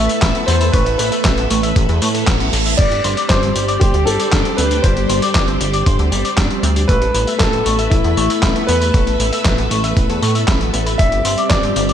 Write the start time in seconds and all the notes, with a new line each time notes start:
Already playing: A3 A4 B4 E5
0.09 E5, closed hi-hat, tambourine
0.22 A1 E4, kick, snare, clap, closed hi-hat, tambourine
0.35 B3, closed hi-hat
0.46 E2 B3 C5, closed hi-hat, tambourine
0.61 E4, closed hi-hat, tambourine
0.72 A1 A3 B4, kick, closed hi-hat, tambourine
0.86 A4, closed hi-hat
0.98 A1 B4, closed hi-hat, tambourine
1.12 E5, closed hi-hat, tambourine
1.25 A1 E5, kick, snare, clap, closed hi-hat, tambourine
1.38 B3, closed hi-hat
1.50 A1 A3, closed hi-hat, tambourine
1.63 E5, closed hi-hat, tambourine
1.76 A1 B4, kick, closed hi-hat, tambourine, reverse cymbal
1.89 E2 A4, closed hi-hat
2.02 A2 A3, tambourine
2.14 A4, closed hi-hat, tambourine
2.27 A1 B3, kick, snare, clap, closed hi-hat, tambourine
2.40 B3, closed hi-hat
2.53 A1 A4, closed hi-hat, tambourine
2.66 E5, closed hi-hat, tambourine
2.77 G1 G3 G4 C5 D5, kick, closed hi-hat, crash, tambourine
2.91 G4, closed hi-hat
3.04 G1 C5, closed hi-hat, tambourine
3.17 D5, closed hi-hat, tambourine
3.29 G1 C5 D5, kick, snare, clap, closed hi-hat, tambourine
3.43 C4, closed hi-hat
3.55 G1 G3, closed hi-hat, tambourine
3.68 D5, closed hi-hat, tambourine
3.80 G1 G4 C5, kick, closed hi-hat, tambourine
3.94 D2 G4, closed hi-hat
4.06 G1 G3 A4, tambourine
4.20 D5, closed hi-hat, tambourine
4.33 G1 D4, kick, snare, clap, closed hi-hat, tambourine
4.45 C4, closed hi-hat
4.57 D2 C4 B4, closed hi-hat, tambourine
4.71 D4, closed hi-hat, tambourine
4.82 G1 G3 C5, kick, closed hi-hat, tambourine
4.97 G4, closed hi-hat
5.09 G1 C5, closed hi-hat, tambourine
5.22 D5, closed hi-hat, tambourine
5.35 G1 D5, kick, snare, clap, closed hi-hat, tambourine
5.48 C4, closed hi-hat
5.61 G1 G3, closed hi-hat, tambourine
5.73 D5, closed hi-hat, tambourine
5.86 G1 C5, kick, closed hi-hat, tambourine
5.99 D2 G4, closed hi-hat
6.12 G1 G3, tambourine
6.25 D5, closed hi-hat, tambourine
6.38 G1 D4, kick, snare, clap, closed hi-hat, tambourine
6.50 C4, closed hi-hat
6.63 D2 C4, closed hi-hat, tambourine
6.76 D4, closed hi-hat, tambourine
6.88 A1 A3 A4 B4 E5, kick, closed hi-hat, tambourine
7.02 A4, closed hi-hat
7.15 A1 B4, closed hi-hat, tambourine
7.27 E5, closed hi-hat, tambourine
7.39 A1 A4 E5, kick, snare, clap, closed hi-hat, tambourine
7.53 B3, closed hi-hat
7.66 A1 A3, closed hi-hat, tambourine
7.79 E5, closed hi-hat, tambourine
7.90 A1 E4 B4, kick, closed hi-hat, tambourine
8.04 E2 A4, closed hi-hat
8.17 A1 A3, tambourine
8.30 E5, closed hi-hat, tambourine
8.43 A1 E4, kick, snare, clap, closed hi-hat, tambourine
8.56 B3, closed hi-hat
8.67 E2 B3 B4, closed hi-hat, tambourine
8.81 E4, closed hi-hat, tambourine
8.94 A1 A3, kick, closed hi-hat, tambourine
9.07 A4, closed hi-hat
9.19 A1 B4, closed hi-hat, tambourine
9.33 E5, closed hi-hat, tambourine
9.45 A1 E5, kick, snare, clap, closed hi-hat, tambourine
9.58 B3, closed hi-hat
9.71 A1 A3, closed hi-hat, tambourine
9.84 E5, closed hi-hat, tambourine
9.97 A1 B4, kick, closed hi-hat, tambourine
10.09 E2 A4, closed hi-hat
10.22 A2 A3, tambourine
10.35 E5, closed hi-hat, tambourine
10.48 A1 E4, kick, snare, clap, closed hi-hat, tambourine
10.61 B3, closed hi-hat
10.73 A1 B3, closed hi-hat, tambourine
10.86 E4, closed hi-hat, tambourine
10.98 G1 G3 C4 G4 D5 E5, kick, closed hi-hat, tambourine
11.12 G4, closed hi-hat
11.25 G1 C5, closed hi-hat, tambourine
11.38 D5, closed hi-hat, tambourine
11.49 G1 D5, kick, snare, clap, closed hi-hat, tambourine
11.63 C4, closed hi-hat
11.76 G1 G3, closed hi-hat, tambourine
11.89 D5, closed hi-hat, tambourine